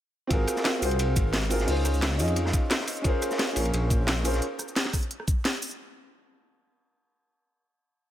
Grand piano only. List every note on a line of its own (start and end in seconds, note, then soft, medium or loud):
0.27 0.77 C4 medium
0.27 0.79 F4 medium
0.27 0.80 F#4 medium
0.32 0.81 G#4 medium
0.32 0.82 A#4 loud
0.79 1.47 C4 medium
0.79 1.48 F4 medium
0.79 1.48 F#4 medium
0.83 1.49 G#4 medium
0.83 1.50 C5 medium
1.49 1.62 C4 medium
1.49 1.62 F4 medium
1.49 1.62 F#4 medium
1.49 1.63 G#4 medium
1.49 1.63 A#4 medium
1.64 2.14 C#4 medium
1.64 2.16 D#4 medium
1.64 2.17 F4 medium
1.69 2.18 G#4 medium
1.69 2.19 C5 medium
2.16 3.00 C#4 medium
2.16 3.02 D#4 medium
2.16 3.02 F4 medium
2.21 3.03 G#4 medium
2.21 3.04 D#5 medium
3.02 3.51 C#4 loud
3.02 3.53 F4 medium
3.02 3.54 G#4 medium
3.07 3.55 A#4 medium
3.07 3.56 C5 loud
3.53 4.21 C#4 medium
3.53 4.22 F4 medium
3.53 4.23 G#4 medium
3.58 4.24 A#4 medium
3.58 4.24 C#5 medium
4.23 4.36 C#4 medium
4.23 4.36 F4 medium
4.23 4.36 G#4 medium
4.23 4.37 A#4 medium
4.23 4.37 C5 medium